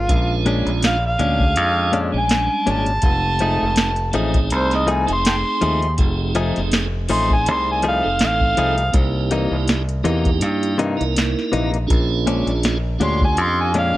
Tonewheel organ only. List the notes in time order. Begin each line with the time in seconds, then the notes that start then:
0.07 G#3 C#4 D4 F4
1.18 G#3 C#4 D4 G#4
2.12 G3 G#3 C#4 D4
3.02 G#3 A3 C4 D#4
4.12 A3 C4 D#4 G#4
5.07 A3 C4 D#4 G#4
5.98 A3 C4 D#4 G#4
7.08 A3 C4 D#4 G#4
8.02 A3 C4 D#4 A4
8.92 A#3 D#4 E4 G4
10.03 A#3 D#4 E4 G4
10.97 A#3 D#4 E4 A#4
11.87 C#4 D4 F4 G#4
12.99 C#4 D4 F4 G4
13.93 C#4 D4 F4